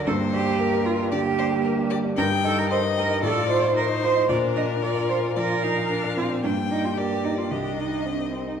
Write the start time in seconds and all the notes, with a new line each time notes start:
0.07 G2 A#3 A4 C5
0.20 G4
0.33 D4 G4
0.47 G4
0.59 A#4
0.73 D4
0.86 F4 G4
0.99 D4
1.12 D3 A#3 G4 D5
1.26 G4
1.38 D4 C5
1.52 G4
1.64 A#4
1.78 D4
1.90 G4 D5
2.04 D4
2.17 G2 D#4 A#4 G5
2.31 G4
2.44 D#4 A4
2.57 G4 A#4
2.70 A#4 C5 D#5
2.83 D#4
2.97 G4 A#4
3.10 D#4
3.23 A2 F4 A4 D5
3.36 F4
3.49 D#4 C5
3.62 F4
3.76 D#4 A#4 C5
3.89 D#4
4.03 F4 C5
4.16 D#4
4.29 A#2 D4 A#4 D5
4.42 F4
4.56 D4 D#5
4.69 F4
4.82 F4 A#4 D5
4.96 D4
5.09 F4 C5
5.23 D4
5.36 F3 F4 A#4 D5
5.50 F4
5.63 D4 D#4 F5
5.77 F4
5.90 D4 A#4
6.03 D4
6.17 C4 F4
6.30 D4
6.44 G2 A#3 D4 G5
6.57 G4
6.71 D4 D#4
6.84 F4 G4
6.97 G4 A#4 D5
7.11 D4
7.24 D#4 G4
7.38 D4 F4
7.51 C2 D4 G4 D#5
7.64 G4
7.77 D#4
7.91 G4
8.05 C4 D4 C5
8.19 D#4
8.32 C4 G4
8.47 D#4